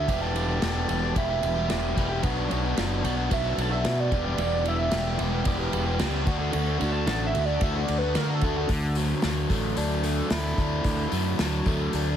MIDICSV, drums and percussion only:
0, 0, Header, 1, 2, 480
1, 0, Start_track
1, 0, Tempo, 539084
1, 69, Time_signature, 4, 2, 24, 8
1, 10833, End_track
2, 0, Start_track
2, 0, Title_t, "Drums"
2, 72, Note_on_c, 9, 36, 100
2, 75, Note_on_c, 9, 51, 84
2, 161, Note_off_c, 9, 36, 0
2, 164, Note_off_c, 9, 51, 0
2, 317, Note_on_c, 9, 51, 64
2, 406, Note_off_c, 9, 51, 0
2, 552, Note_on_c, 9, 51, 81
2, 554, Note_on_c, 9, 38, 109
2, 642, Note_off_c, 9, 51, 0
2, 643, Note_off_c, 9, 38, 0
2, 791, Note_on_c, 9, 51, 72
2, 881, Note_off_c, 9, 51, 0
2, 1031, Note_on_c, 9, 36, 92
2, 1033, Note_on_c, 9, 51, 83
2, 1120, Note_off_c, 9, 36, 0
2, 1122, Note_off_c, 9, 51, 0
2, 1273, Note_on_c, 9, 51, 71
2, 1362, Note_off_c, 9, 51, 0
2, 1511, Note_on_c, 9, 51, 82
2, 1513, Note_on_c, 9, 38, 107
2, 1600, Note_off_c, 9, 51, 0
2, 1602, Note_off_c, 9, 38, 0
2, 1753, Note_on_c, 9, 36, 80
2, 1758, Note_on_c, 9, 51, 65
2, 1843, Note_off_c, 9, 36, 0
2, 1847, Note_off_c, 9, 51, 0
2, 1988, Note_on_c, 9, 51, 85
2, 1991, Note_on_c, 9, 36, 102
2, 2077, Note_off_c, 9, 51, 0
2, 2080, Note_off_c, 9, 36, 0
2, 2234, Note_on_c, 9, 51, 57
2, 2323, Note_off_c, 9, 51, 0
2, 2470, Note_on_c, 9, 51, 83
2, 2472, Note_on_c, 9, 38, 101
2, 2559, Note_off_c, 9, 51, 0
2, 2561, Note_off_c, 9, 38, 0
2, 2712, Note_on_c, 9, 51, 65
2, 2801, Note_off_c, 9, 51, 0
2, 2949, Note_on_c, 9, 36, 99
2, 2949, Note_on_c, 9, 51, 83
2, 3038, Note_off_c, 9, 36, 0
2, 3038, Note_off_c, 9, 51, 0
2, 3191, Note_on_c, 9, 51, 69
2, 3280, Note_off_c, 9, 51, 0
2, 3425, Note_on_c, 9, 51, 87
2, 3427, Note_on_c, 9, 38, 107
2, 3514, Note_off_c, 9, 51, 0
2, 3516, Note_off_c, 9, 38, 0
2, 3666, Note_on_c, 9, 36, 99
2, 3667, Note_on_c, 9, 51, 70
2, 3755, Note_off_c, 9, 36, 0
2, 3756, Note_off_c, 9, 51, 0
2, 3902, Note_on_c, 9, 51, 89
2, 3991, Note_off_c, 9, 51, 0
2, 4144, Note_on_c, 9, 51, 67
2, 4233, Note_off_c, 9, 51, 0
2, 4376, Note_on_c, 9, 51, 84
2, 4378, Note_on_c, 9, 38, 104
2, 4465, Note_off_c, 9, 51, 0
2, 4467, Note_off_c, 9, 38, 0
2, 4619, Note_on_c, 9, 51, 65
2, 4708, Note_off_c, 9, 51, 0
2, 4855, Note_on_c, 9, 51, 85
2, 4860, Note_on_c, 9, 36, 105
2, 4944, Note_off_c, 9, 51, 0
2, 4949, Note_off_c, 9, 36, 0
2, 5102, Note_on_c, 9, 51, 73
2, 5191, Note_off_c, 9, 51, 0
2, 5337, Note_on_c, 9, 51, 95
2, 5339, Note_on_c, 9, 38, 106
2, 5427, Note_off_c, 9, 51, 0
2, 5428, Note_off_c, 9, 38, 0
2, 5579, Note_on_c, 9, 36, 102
2, 5580, Note_on_c, 9, 51, 67
2, 5668, Note_off_c, 9, 36, 0
2, 5669, Note_off_c, 9, 51, 0
2, 5815, Note_on_c, 9, 51, 80
2, 5904, Note_off_c, 9, 51, 0
2, 6060, Note_on_c, 9, 51, 61
2, 6149, Note_off_c, 9, 51, 0
2, 6298, Note_on_c, 9, 51, 83
2, 6300, Note_on_c, 9, 38, 96
2, 6387, Note_off_c, 9, 51, 0
2, 6389, Note_off_c, 9, 38, 0
2, 6542, Note_on_c, 9, 51, 65
2, 6631, Note_off_c, 9, 51, 0
2, 6774, Note_on_c, 9, 51, 83
2, 6779, Note_on_c, 9, 36, 98
2, 6863, Note_off_c, 9, 51, 0
2, 6868, Note_off_c, 9, 36, 0
2, 7019, Note_on_c, 9, 51, 68
2, 7108, Note_off_c, 9, 51, 0
2, 7257, Note_on_c, 9, 51, 88
2, 7258, Note_on_c, 9, 38, 108
2, 7346, Note_off_c, 9, 51, 0
2, 7347, Note_off_c, 9, 38, 0
2, 7492, Note_on_c, 9, 51, 65
2, 7498, Note_on_c, 9, 36, 82
2, 7581, Note_off_c, 9, 51, 0
2, 7587, Note_off_c, 9, 36, 0
2, 7736, Note_on_c, 9, 46, 82
2, 7739, Note_on_c, 9, 36, 106
2, 7825, Note_off_c, 9, 46, 0
2, 7828, Note_off_c, 9, 36, 0
2, 7971, Note_on_c, 9, 46, 61
2, 8060, Note_off_c, 9, 46, 0
2, 8211, Note_on_c, 9, 46, 71
2, 8213, Note_on_c, 9, 38, 102
2, 8300, Note_off_c, 9, 46, 0
2, 8302, Note_off_c, 9, 38, 0
2, 8457, Note_on_c, 9, 36, 85
2, 8457, Note_on_c, 9, 46, 63
2, 8546, Note_off_c, 9, 36, 0
2, 8546, Note_off_c, 9, 46, 0
2, 8696, Note_on_c, 9, 46, 76
2, 8785, Note_off_c, 9, 46, 0
2, 8935, Note_on_c, 9, 46, 67
2, 9024, Note_off_c, 9, 46, 0
2, 9174, Note_on_c, 9, 46, 84
2, 9176, Note_on_c, 9, 38, 110
2, 9264, Note_off_c, 9, 46, 0
2, 9265, Note_off_c, 9, 38, 0
2, 9418, Note_on_c, 9, 36, 85
2, 9418, Note_on_c, 9, 46, 60
2, 9507, Note_off_c, 9, 36, 0
2, 9508, Note_off_c, 9, 46, 0
2, 9655, Note_on_c, 9, 46, 77
2, 9657, Note_on_c, 9, 36, 115
2, 9744, Note_off_c, 9, 46, 0
2, 9746, Note_off_c, 9, 36, 0
2, 9898, Note_on_c, 9, 46, 55
2, 9987, Note_off_c, 9, 46, 0
2, 10140, Note_on_c, 9, 46, 78
2, 10142, Note_on_c, 9, 38, 113
2, 10230, Note_off_c, 9, 46, 0
2, 10231, Note_off_c, 9, 38, 0
2, 10381, Note_on_c, 9, 46, 56
2, 10382, Note_on_c, 9, 36, 90
2, 10470, Note_off_c, 9, 46, 0
2, 10471, Note_off_c, 9, 36, 0
2, 10622, Note_on_c, 9, 46, 77
2, 10711, Note_off_c, 9, 46, 0
2, 10833, End_track
0, 0, End_of_file